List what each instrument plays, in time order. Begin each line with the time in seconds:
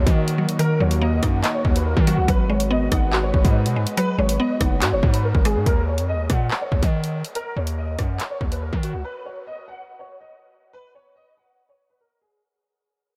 Already playing: analog synth pad D#3 A#3 F#4, synth pluck F#3 A#3 D#4 D#5
0.06 808-style bass D#3, grand piano D#5, kick, closed hi-hat
0.28 closed hi-hat
0.38 synth pluck F#3
0.49 closed hi-hat
0.59 synth pluck D#3, grand piano A#4, closed hi-hat
0.80 808-style bass D#2, synth pluck F#3, grand piano C#5
0.91 closed hi-hat
1.01 synth pluck A#3, grand piano D#5
1.23 808-style bass F#2, synth pluck D#4, grand piano F#5, kick, cross-stick, closed hi-hat
1.44 synth pluck D#5, clap, closed hi-hat
1.54 grand piano C#5
1.65 808-style bass D#2, kick
1.75 grand piano B4, closed hi-hat
1.86 grand piano A#4
1.97 808-style bass D#3, kick
2.07 synth pluck F#3, grand piano F#4, closed hi-hat
2.18 808-style bass C#2
2.28 808-style bass G#1, synth pluck F#3, analog synth pad G#3 B4, grand piano B4, kick, closed hi-hat
2.49 synth pluck G#3, grand piano C#5
2.60 closed hi-hat
2.71 synth pluck B3, grand piano D#5
2.92 808-style bass G#1, synth pluck D#4, grand piano F#5, kick, cross-stick, closed hi-hat
3.13 synth pluck F#4, clap
3.23 grand piano C#5
3.34 808-style bass G#1, kick
3.45 808-style bass G#2, grand piano D#5, kick, closed hi-hat
3.66 808-style bass B2, closed hi-hat
3.76 808-style bass G#2, synth pluck G#3
3.87 closed hi-hat
3.97 synth pluck F#3, grand piano B4, closed hi-hat
4.18 808-style bass G#1, synth pluck G#3, grand piano C#5
4.29 closed hi-hat
4.39 synth pluck B3, grand piano D#5
4.61 808-style bass F#1, synth pluck D#4, grand piano F#5, kick, cross-stick, closed hi-hat
4.82 808-style bass G#2, synth pluck F#4, clap, closed hi-hat
4.92 808-style bass F#1, grand piano C#5
5.03 808-style bass G#2, kick
5.14 grand piano B4, closed hi-hat
5.24 grand piano A#4
5.35 808-style bass G#1, kick
5.45 synth pluck G#3, grand piano G#4, cross-stick, closed hi-hat
5.56 808-style bass G#2
5.66 808-style bass D#2, grand piano A#4, kick, closed hi-hat
5.88 grand piano C#5
5.98 808-style bass F2, closed hi-hat
6.08 grand piano D#5
6.14 808-style bass D#2
6.29 808-style bass A#2, grand piano F#5, kick, cross-stick, closed hi-hat
6.51 clap
6.61 grand piano C#5
6.72 808-style bass D#2, kick
6.82 808-style bass D#3, grand piano D#5, kick, closed hi-hat
7.04 closed hi-hat
7.25 closed hi-hat
7.35 grand piano A#4, closed hi-hat
7.57 808-style bass D#2, grand piano C#5
7.67 closed hi-hat
7.78 grand piano D#5
7.99 808-style bass F#2, grand piano F#5, kick, cross-stick, closed hi-hat
8.20 clap, closed hi-hat
8.30 grand piano C#5
8.41 808-style bass D#2, kick
8.51 grand piano B4, closed hi-hat
8.62 grand piano A#4
8.73 808-style bass D#3, kick
8.83 grand piano F#4, closed hi-hat
8.94 808-style bass C#2
9.04 grand piano B4
9.26 grand piano C#5
9.47 grand piano D#5
9.68 grand piano F#5
9.99 grand piano C#5
10.21 grand piano D#5
10.73 grand piano B4
10.95 grand piano C#5
11.16 grand piano D#5
11.37 grand piano F#5
11.69 grand piano C#5
11.90 grand piano B4
12.00 grand piano A#4
12.21 grand piano G#4